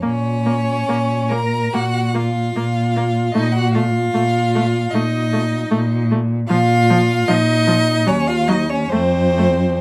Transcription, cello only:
\new Staff \with { instrumentName = "Cello" } { \clef bass \time 4/4 \key bes \minor \tempo 4 = 75 bes,4 bes,4 bes,4 bes,4 | bes,4 bes,4 bes,4 bes,4 | bes,4 bes,4 ees,4 f,4 | }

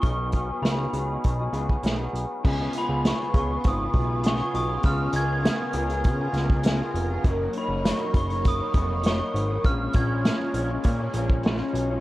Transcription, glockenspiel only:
\new Staff \with { instrumentName = "Glockenspiel" } { \time 4/4 \key cis \mixolydian \tempo 4 = 100 cis'''4 b''2~ b''8 r8 | r8 b''8 cis'''8 cis'''8 dis'''4 cis'''8 dis'''8 | eis'''8 gis'''2. r8 | r8 b''8 cis'''8 cis'''8 dis'''4 cis'''4 |
eis'''8 gis'''2. r8 | }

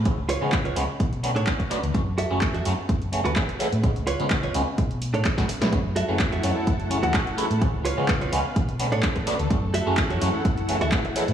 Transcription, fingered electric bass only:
\new Staff \with { instrumentName = "Fingered electric bass" } { \clef bass \time 4/4 \key fis \minor \tempo 4 = 127 cis,8 r16 cis8 cis,16 cis,16 r16 b,8. a,16 r8. d,16 | fis,8 r16 fis,,8 fis,16 fis,16 r16 fis,,8. e,16 r8. a,16 | cis,8 r16 cis8 cis,16 cis,16 r16 b,8. a,16 r16 gis,16 r16 b,16 | fis,8 r16 fis,,8 fis,16 fis,16 r16 fis,,8. e,16 r8. a,16 |
cis,8 r16 cis8 cis,16 cis,16 r16 b,8. a,16 r8. d,16 | fis,8 r16 fis,,8 fis,16 fis,16 r16 fis,,8. e,16 r8. a,16 | }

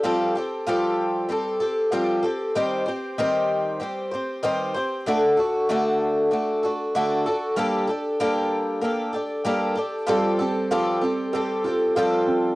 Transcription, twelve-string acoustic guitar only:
\new Staff \with { instrumentName = "Twelve-string acoustic guitar" } { \time 4/4 \key f \mixolydian \tempo 4 = 96 <f g c' g' a'>8 <c' g' a'>8 <f g c' g' a'>4 <g c' g' a'>8 <c' g' a'>8 <f g c' g' a'>8 <c' g' a'>8 | <ees g c' g' c''>8 <c' g' c''>8 <ees g c' g' c''>4 <g c' g' c''>8 <c' g' c''>8 <ees g c' g' c''>8 <c' g' c''>8 | <d a d' fis' a'>8 <d' fis' a'>8 <d a d' fis' a'>4 <a d' fis' a'>8 <d' fis' a'>8 <d a d' fis' a'>8 <d' fis' a'>8 | <g bes d' g' a'>8 <d' g' a'>8 <g bes d' g' a'>4 <bes d' g' a'>8 <d' g' a'>8 <g bes d' g' a'>8 <d' g' a'>8 |
<f g c' g' a'>8 <c' g' a'>8 <f g c' g' a'>8 <c' g' a'>8 <g c' g' a'>8 <c' g' a'>8 <f g c' g' a'>4 | }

